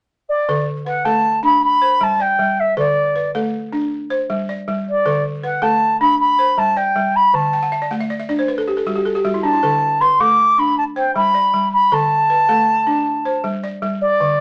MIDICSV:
0, 0, Header, 1, 3, 480
1, 0, Start_track
1, 0, Tempo, 381194
1, 607, Time_signature, 12, 3, 24, 8
1, 18139, End_track
2, 0, Start_track
2, 0, Title_t, "Flute"
2, 0, Program_c, 0, 73
2, 369, Note_on_c, 0, 74, 80
2, 815, Note_off_c, 0, 74, 0
2, 1092, Note_on_c, 0, 78, 76
2, 1324, Note_on_c, 0, 81, 84
2, 1343, Note_off_c, 0, 78, 0
2, 1806, Note_off_c, 0, 81, 0
2, 1817, Note_on_c, 0, 83, 81
2, 2036, Note_off_c, 0, 83, 0
2, 2063, Note_on_c, 0, 83, 93
2, 2561, Note_on_c, 0, 81, 82
2, 2580, Note_off_c, 0, 83, 0
2, 2790, Note_on_c, 0, 79, 83
2, 2808, Note_off_c, 0, 81, 0
2, 3274, Note_on_c, 0, 76, 77
2, 3293, Note_off_c, 0, 79, 0
2, 3498, Note_off_c, 0, 76, 0
2, 3505, Note_on_c, 0, 74, 77
2, 4167, Note_off_c, 0, 74, 0
2, 6159, Note_on_c, 0, 74, 80
2, 6591, Note_off_c, 0, 74, 0
2, 6858, Note_on_c, 0, 78, 78
2, 7087, Note_on_c, 0, 81, 86
2, 7106, Note_off_c, 0, 78, 0
2, 7557, Note_off_c, 0, 81, 0
2, 7565, Note_on_c, 0, 83, 89
2, 7789, Note_off_c, 0, 83, 0
2, 7804, Note_on_c, 0, 83, 92
2, 8293, Note_on_c, 0, 81, 82
2, 8312, Note_off_c, 0, 83, 0
2, 8526, Note_on_c, 0, 79, 83
2, 8545, Note_off_c, 0, 81, 0
2, 9017, Note_on_c, 0, 83, 86
2, 9036, Note_off_c, 0, 79, 0
2, 9251, Note_on_c, 0, 81, 80
2, 9269, Note_off_c, 0, 83, 0
2, 9967, Note_off_c, 0, 81, 0
2, 11880, Note_on_c, 0, 81, 85
2, 12603, Note_on_c, 0, 84, 82
2, 12622, Note_off_c, 0, 81, 0
2, 12849, Note_on_c, 0, 86, 83
2, 12868, Note_off_c, 0, 84, 0
2, 13339, Note_on_c, 0, 83, 82
2, 13358, Note_off_c, 0, 86, 0
2, 13571, Note_off_c, 0, 83, 0
2, 13578, Note_on_c, 0, 81, 75
2, 13654, Note_off_c, 0, 81, 0
2, 13816, Note_on_c, 0, 79, 74
2, 14033, Note_off_c, 0, 79, 0
2, 14052, Note_on_c, 0, 83, 85
2, 14718, Note_off_c, 0, 83, 0
2, 14777, Note_on_c, 0, 83, 81
2, 15030, Note_on_c, 0, 81, 92
2, 15049, Note_off_c, 0, 83, 0
2, 16939, Note_off_c, 0, 81, 0
2, 17649, Note_on_c, 0, 74, 90
2, 18139, Note_off_c, 0, 74, 0
2, 18139, End_track
3, 0, Start_track
3, 0, Title_t, "Balafon"
3, 0, Program_c, 1, 12
3, 613, Note_on_c, 1, 50, 77
3, 616, Note_on_c, 1, 69, 66
3, 1088, Note_on_c, 1, 71, 58
3, 1091, Note_off_c, 1, 50, 0
3, 1312, Note_off_c, 1, 69, 0
3, 1327, Note_on_c, 1, 57, 69
3, 1327, Note_on_c, 1, 69, 59
3, 1800, Note_on_c, 1, 62, 71
3, 1808, Note_off_c, 1, 57, 0
3, 1808, Note_off_c, 1, 71, 0
3, 2044, Note_off_c, 1, 62, 0
3, 2048, Note_off_c, 1, 69, 0
3, 2287, Note_on_c, 1, 72, 57
3, 2528, Note_on_c, 1, 55, 72
3, 2768, Note_on_c, 1, 74, 59
3, 2991, Note_off_c, 1, 55, 0
3, 3007, Note_on_c, 1, 55, 73
3, 3008, Note_off_c, 1, 72, 0
3, 3487, Note_on_c, 1, 50, 74
3, 3488, Note_off_c, 1, 55, 0
3, 3488, Note_off_c, 1, 74, 0
3, 3489, Note_on_c, 1, 69, 67
3, 3968, Note_off_c, 1, 50, 0
3, 3974, Note_on_c, 1, 71, 59
3, 4202, Note_off_c, 1, 69, 0
3, 4217, Note_on_c, 1, 57, 73
3, 4217, Note_on_c, 1, 69, 62
3, 4691, Note_off_c, 1, 71, 0
3, 4691, Note_on_c, 1, 62, 70
3, 4693, Note_off_c, 1, 57, 0
3, 4930, Note_off_c, 1, 62, 0
3, 4933, Note_off_c, 1, 69, 0
3, 5168, Note_on_c, 1, 72, 61
3, 5412, Note_on_c, 1, 55, 75
3, 5655, Note_on_c, 1, 74, 61
3, 5876, Note_off_c, 1, 55, 0
3, 5888, Note_off_c, 1, 72, 0
3, 5891, Note_on_c, 1, 55, 75
3, 6366, Note_on_c, 1, 50, 79
3, 6368, Note_on_c, 1, 69, 69
3, 6369, Note_off_c, 1, 55, 0
3, 6371, Note_off_c, 1, 74, 0
3, 6843, Note_on_c, 1, 71, 58
3, 6847, Note_off_c, 1, 50, 0
3, 7061, Note_off_c, 1, 69, 0
3, 7076, Note_on_c, 1, 69, 64
3, 7077, Note_on_c, 1, 57, 71
3, 7562, Note_off_c, 1, 57, 0
3, 7565, Note_off_c, 1, 71, 0
3, 7566, Note_on_c, 1, 62, 73
3, 7801, Note_off_c, 1, 69, 0
3, 7806, Note_off_c, 1, 62, 0
3, 8043, Note_on_c, 1, 72, 57
3, 8280, Note_on_c, 1, 55, 66
3, 8519, Note_on_c, 1, 74, 62
3, 8746, Note_off_c, 1, 55, 0
3, 8761, Note_on_c, 1, 55, 72
3, 8764, Note_off_c, 1, 72, 0
3, 9239, Note_on_c, 1, 50, 78
3, 9242, Note_off_c, 1, 74, 0
3, 9243, Note_off_c, 1, 55, 0
3, 9486, Note_on_c, 1, 79, 62
3, 9603, Note_on_c, 1, 78, 67
3, 9709, Note_off_c, 1, 79, 0
3, 9722, Note_off_c, 1, 50, 0
3, 9722, Note_on_c, 1, 76, 61
3, 9827, Note_off_c, 1, 78, 0
3, 9845, Note_on_c, 1, 74, 62
3, 9947, Note_off_c, 1, 76, 0
3, 9958, Note_on_c, 1, 78, 60
3, 9959, Note_on_c, 1, 57, 72
3, 10068, Note_off_c, 1, 74, 0
3, 10081, Note_on_c, 1, 76, 59
3, 10184, Note_off_c, 1, 78, 0
3, 10201, Note_on_c, 1, 74, 58
3, 10306, Note_off_c, 1, 76, 0
3, 10321, Note_on_c, 1, 76, 59
3, 10426, Note_off_c, 1, 74, 0
3, 10439, Note_on_c, 1, 62, 72
3, 10439, Note_on_c, 1, 74, 63
3, 10442, Note_off_c, 1, 57, 0
3, 10546, Note_off_c, 1, 76, 0
3, 10562, Note_on_c, 1, 72, 59
3, 10665, Note_off_c, 1, 74, 0
3, 10681, Note_off_c, 1, 62, 0
3, 10682, Note_on_c, 1, 71, 61
3, 10786, Note_off_c, 1, 72, 0
3, 10803, Note_on_c, 1, 69, 62
3, 10906, Note_off_c, 1, 71, 0
3, 10924, Note_on_c, 1, 67, 59
3, 11027, Note_off_c, 1, 69, 0
3, 11043, Note_on_c, 1, 69, 59
3, 11147, Note_off_c, 1, 67, 0
3, 11164, Note_on_c, 1, 55, 70
3, 11165, Note_on_c, 1, 66, 62
3, 11267, Note_off_c, 1, 69, 0
3, 11278, Note_on_c, 1, 67, 59
3, 11388, Note_off_c, 1, 66, 0
3, 11401, Note_on_c, 1, 69, 62
3, 11504, Note_off_c, 1, 67, 0
3, 11525, Note_on_c, 1, 67, 60
3, 11625, Note_off_c, 1, 69, 0
3, 11628, Note_off_c, 1, 55, 0
3, 11643, Note_on_c, 1, 55, 72
3, 11644, Note_on_c, 1, 66, 63
3, 11748, Note_off_c, 1, 67, 0
3, 11763, Note_on_c, 1, 64, 58
3, 11867, Note_off_c, 1, 66, 0
3, 11879, Note_on_c, 1, 62, 62
3, 11987, Note_off_c, 1, 64, 0
3, 12002, Note_on_c, 1, 64, 60
3, 12104, Note_off_c, 1, 62, 0
3, 12123, Note_off_c, 1, 55, 0
3, 12124, Note_on_c, 1, 69, 63
3, 12125, Note_on_c, 1, 50, 74
3, 12226, Note_off_c, 1, 64, 0
3, 12605, Note_off_c, 1, 50, 0
3, 12609, Note_on_c, 1, 71, 59
3, 12834, Note_off_c, 1, 69, 0
3, 12848, Note_on_c, 1, 57, 73
3, 12849, Note_on_c, 1, 69, 57
3, 13325, Note_on_c, 1, 62, 69
3, 13326, Note_off_c, 1, 57, 0
3, 13326, Note_off_c, 1, 71, 0
3, 13564, Note_off_c, 1, 62, 0
3, 13566, Note_off_c, 1, 69, 0
3, 13803, Note_on_c, 1, 72, 57
3, 14048, Note_on_c, 1, 55, 72
3, 14284, Note_on_c, 1, 74, 60
3, 14511, Note_off_c, 1, 55, 0
3, 14524, Note_off_c, 1, 72, 0
3, 14526, Note_on_c, 1, 55, 69
3, 15005, Note_off_c, 1, 74, 0
3, 15006, Note_off_c, 1, 55, 0
3, 15008, Note_on_c, 1, 69, 66
3, 15009, Note_on_c, 1, 50, 75
3, 15487, Note_off_c, 1, 50, 0
3, 15487, Note_on_c, 1, 71, 58
3, 15710, Note_off_c, 1, 69, 0
3, 15724, Note_on_c, 1, 57, 73
3, 15725, Note_on_c, 1, 69, 61
3, 16202, Note_on_c, 1, 62, 69
3, 16205, Note_off_c, 1, 57, 0
3, 16207, Note_off_c, 1, 71, 0
3, 16444, Note_off_c, 1, 62, 0
3, 16446, Note_off_c, 1, 69, 0
3, 16690, Note_on_c, 1, 72, 60
3, 16923, Note_on_c, 1, 55, 74
3, 17170, Note_on_c, 1, 74, 62
3, 17391, Note_off_c, 1, 55, 0
3, 17406, Note_on_c, 1, 55, 77
3, 17409, Note_off_c, 1, 72, 0
3, 17887, Note_off_c, 1, 55, 0
3, 17887, Note_on_c, 1, 50, 75
3, 17890, Note_off_c, 1, 74, 0
3, 18139, Note_off_c, 1, 50, 0
3, 18139, End_track
0, 0, End_of_file